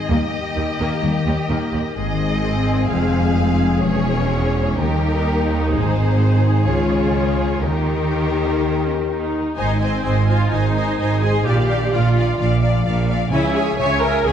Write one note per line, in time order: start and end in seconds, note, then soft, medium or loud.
0.00 0.11 G#2 soft
0.00 0.11 G#3 soft
0.00 0.12 C4 soft
0.00 0.39 D#4 soft
0.00 0.12 G#4 soft
0.00 1.96 D#5 soft
0.09 0.17 D#2 medium
0.09 1.03 D#3 soft
0.09 0.26 G3 soft
0.09 0.26 A#3 soft
0.09 0.32 A#3 soft
0.09 1.96 G4 medium
0.25 1.18 A#3 soft
0.41 1.34 D#4 soft
0.56 0.64 D#2 soft
0.56 0.65 G3 soft
0.56 0.86 G4 soft
0.72 1.65 A#4 soft
0.79 0.87 D#2 medium
0.79 1.02 A#3 medium
0.88 1.49 G4 soft
1.03 1.11 D#2 soft
1.03 1.99 D#3 soft
1.03 1.19 G3 medium
1.03 1.11 A#3 soft
1.03 1.19 A#3 medium
1.19 1.98 A#3 soft
1.26 1.34 D#2 soft
1.26 1.34 G3 soft
1.35 2.92 D#4 soft
1.49 1.57 D#2 medium
1.49 1.58 D#2 medium
1.49 1.71 A#3 medium
1.49 1.80 G4 soft
1.66 1.98 A#4 soft
1.73 1.81 D#2 soft
1.73 1.81 A#3 soft
1.81 1.98 G4 soft
1.96 2.86 G#1 medium
1.96 2.86 G#2 medium
1.96 2.92 G#2 medium
1.96 4.75 G#3 medium
1.96 3.80 C4 medium
1.96 3.81 C4 medium
1.96 4.75 G#4 medium
1.96 2.86 D#5 medium
2.12 2.92 D#3 soft
2.28 3.05 G#3 soft
2.44 2.73 C4 soft
2.59 3.36 G#4 soft
2.74 3.20 C4 soft
2.90 3.84 F1 medium
2.90 3.84 F2 medium
2.90 3.86 F3 medium
2.90 3.84 F5 soft
3.06 3.99 G#3 soft
3.21 3.51 C4 soft
3.37 3.67 G#4 soft
3.52 3.86 C4 soft
3.68 4.31 G#4 soft
3.84 4.79 E1 medium
3.84 4.79 E2 medium
3.84 4.81 E3 medium
3.84 4.79 C#4 medium
3.84 4.75 C#4 medium
3.84 4.76 C#5 medium
4.00 4.81 G#3 soft
4.16 4.46 C#4 soft
4.32 4.62 G#4 soft
4.47 4.81 C#4 soft
4.63 4.81 G#4 soft
4.78 5.71 D#2 medium
4.78 5.71 D#2 soft
4.78 5.75 D#3 medium
4.78 5.69 G3 medium
4.78 5.69 A#3 medium
4.78 6.67 D#4 medium
4.78 5.73 G4 medium
4.78 5.73 A#4 medium
4.94 5.75 A#3 soft
5.11 6.19 D#4 soft
5.26 5.57 G4 soft
5.42 5.75 A#4 soft
5.58 5.75 G4 soft
5.73 6.67 G#1 medium
5.73 6.67 G#2 medium
5.73 6.69 G#2 medium
5.73 7.60 G#3 medium
5.73 6.63 C4 medium
5.73 7.59 G#4 medium
5.73 6.66 C5 medium
5.89 6.69 D#3 soft
6.05 6.70 C4 soft
6.21 6.51 D#4 soft
6.36 7.30 G#4 soft
6.52 6.69 D#4 soft
6.67 7.63 C#2 medium
6.67 7.64 C#3 soft
6.67 7.66 C#3 soft
6.67 7.59 F4 medium
6.67 7.62 F4 soft
6.67 7.61 C#5 soft
6.83 7.66 G#3 soft
7.00 7.66 C#4 soft
7.15 7.46 F4 soft
7.31 7.65 G#4 soft
7.47 7.65 F4 soft
7.63 9.37 D#2 soft
7.63 8.58 D#3 soft
7.63 9.37 D#3 soft
7.63 9.30 A#3 medium
7.63 8.85 D#4 soft
7.63 9.37 G4 soft
7.63 9.30 G4 soft
7.63 9.37 A#4 soft
7.80 8.75 A#3 soft
7.95 8.92 D#4 soft
8.11 8.43 G4 soft
8.27 9.24 A#4 soft
8.44 9.08 G4 soft
8.60 9.59 D#3 soft
8.77 9.59 A#3 soft
8.85 8.93 C#4 soft
8.93 9.88 D#4 soft
9.09 9.56 D#4 soft
9.09 9.40 G4 soft
9.25 9.59 A#4 soft
9.41 9.59 G4 soft
9.57 9.99 G#1 soft
9.57 11.48 G#2 soft
9.57 9.99 G#2 medium
9.57 9.81 D#4 medium
9.57 9.80 C5 soft
9.57 9.79 D#5 soft
9.57 9.78 G#5 soft
9.73 10.35 C4 soft
9.79 10.27 C4 medium
9.79 10.03 C5 soft
9.79 10.03 D#5 soft
9.79 10.03 G#5 soft
9.89 10.19 D#4 soft
10.04 10.47 G#1 soft
10.04 10.47 G#2 soft
10.04 10.97 G#4 soft
10.04 10.27 C5 soft
10.04 10.27 D#5 soft
10.04 10.26 G#5 soft
10.21 10.82 D#4 soft
10.27 10.52 F4 medium
10.27 10.50 C5 soft
10.27 10.50 D#5 soft
10.27 10.50 G#5 soft
10.36 10.66 C4 soft
10.51 10.93 G#1 soft
10.51 10.93 G#2 soft
10.51 11.47 D#3 soft
10.51 11.22 D#4 medium
10.51 10.75 C5 soft
10.51 10.75 D#5 soft
10.51 10.74 G#5 soft
10.68 11.29 C4 soft
10.75 10.98 C5 soft
10.75 10.98 D#5 soft
10.75 10.97 G#5 soft
10.83 11.13 D#4 soft
10.98 11.40 G#1 medium
10.98 11.40 G#2 medium
10.98 11.47 G#4 soft
10.98 11.21 C5 soft
10.98 11.21 D#5 soft
10.98 11.20 G#5 soft
11.15 11.48 D#4 soft
11.21 11.46 G#4 medium
11.21 11.45 C5 soft
11.21 11.45 D#5 soft
11.21 11.45 G#5 soft
11.30 11.48 C4 soft
11.46 11.87 A#1 medium
11.46 11.87 A#2 medium
11.46 13.34 A#2 soft
11.46 11.93 G4 medium
11.46 11.67 D5 soft
11.46 11.67 F5 soft
11.62 12.22 A#3 soft
11.69 11.90 D5 soft
11.69 11.92 F5 soft
11.77 12.07 D4 soft
11.92 12.33 A#1 medium
11.92 12.34 A#2 medium
11.92 12.84 F4 soft
11.92 12.39 F4 medium
11.92 12.14 D5 soft
11.92 12.15 F5 soft
12.08 12.69 D4 soft
12.16 12.38 D5 soft
12.16 12.38 F5 soft
12.24 12.53 A#3 soft
12.39 12.80 A#1 medium
12.39 12.80 A#2 medium
12.39 13.34 F3 soft
12.39 12.61 D5 soft
12.39 12.61 F5 soft
12.54 13.15 A#3 soft
12.63 12.84 D5 soft
12.63 12.84 F5 soft
12.70 13.00 D4 soft
12.85 13.26 A#1 medium
12.85 13.26 A#2 medium
12.85 13.34 F4 soft
12.85 13.07 D5 soft
12.85 13.07 F5 soft
13.01 13.34 D4 soft
13.08 13.31 D5 soft
13.08 13.31 F5 soft
13.17 13.34 A#3 soft
13.31 13.73 C#2 medium
13.31 13.73 C#3 medium
13.31 14.32 C#3 medium
13.31 13.54 E4 medium
13.31 13.53 C#5 medium
13.31 13.54 E5 medium
13.31 13.54 G#5 medium
13.48 13.78 C#4 soft
13.55 13.79 G#4 medium
13.55 13.77 C#5 medium
13.55 13.77 E5 soft
13.55 13.78 G#5 medium
13.64 13.94 G#4 soft
13.78 14.20 C#2 medium
13.78 14.20 C#3 medium
13.78 14.09 C#4 medium
13.78 14.01 C#5 soft
13.78 14.02 C#5 medium
13.78 14.00 E5 medium
13.78 14.01 G#5 medium
13.95 14.32 G#4 soft
14.02 14.26 A#4 medium
14.02 14.25 C#5 soft
14.02 14.24 E5 soft
14.02 14.25 G#5 medium
14.25 14.32 C#2 medium
14.25 14.32 C#3 medium
14.25 14.32 G#3 soft
14.25 14.32 G#4 medium
14.25 14.32 C#5 medium
14.25 14.32 E5 medium
14.25 14.32 G#5 medium